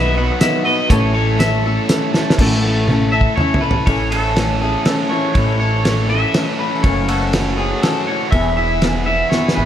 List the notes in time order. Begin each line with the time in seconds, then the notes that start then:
Already playing: B1 F#3 B3 D#4 F#4 B4 E5
0.14 B3 D#4 B4 F#5
0.40 F#3 B3 D#4 B4 E5, snare, closed hi-hat
0.64 D#4 F#4 B4 D#5
0.68 B3
0.90 A1 A2 E3 A3 C#4 E4 A4 C#5, kick, closed hi-hat
1.14 A3 C#4 A4 C#5
1.38 E3 A3 C#4 A4 E5, snare, closed hi-hat
1.64 A3 C#4 E4 A4
1.89 A3 C#4 E4 A4, snare, closed hi-hat
2.14 A3 C#4 E4 A4, snare
2.30 snare
2.39 A1 A2 E3 A3 C#4 E4 A4, kick, crash
2.64 A3
2.88 A3 C#4 E4, high tom
2.92 A4
3.12 A4 E5
3.21 kick
3.36 A3 C#4 C#5, mid tom
3.40 E4 A4
3.54 floor tom
3.61 C#4 E4 A4 B4
3.66 A3
3.71 floor tom
3.86 A1 A2 E3 A3 C#4 E4 A4 C#5, kick, ride
4.11 A4, ride
4.36 A3 C#4 E4 A4, snare, ride
4.61 A3 C#4 E4 G#4 A4
4.85 A3 C#4 E4 A4, snare, ride
5.10 E3 C#4 E4 A4 C#5
5.14 A3
5.34 A1 A2 E3 A3 C#4 E4 A4 C#5, kick, ride
5.60 A4 C#5
5.85 A3 C#4 E4 A4, snare, ride
6.09 A3 C#4 E4 A4 E5
6.34 A3 C#4 E4 A4, snare, ride
6.59 E3 B4
6.83 F#1 F#2 C#3 E3 A3 C#4 A4 C#5, kick, ride
7.08 F#4 A4, ride
7.32 E3 A3 C#4 A4, snare, ride
7.57 E3 A3 C#4 F#4 G#4 A4
7.82 E3 A3 C#4 A4, snare, ride
8.07 E3 C#5
8.31 E1 E2 E3 B3 E4 G#4 E5, kick, ride
8.57 E4 E5
8.81 E3 B3 E4 G#4, snare, ride
9.06 B3 E4 G#4 E5
9.30 F#1 E3 B3 E4 C#5, snare
9.34 G#4
9.48 snare
9.55 G#1 E3 B3 E4 G#4 B4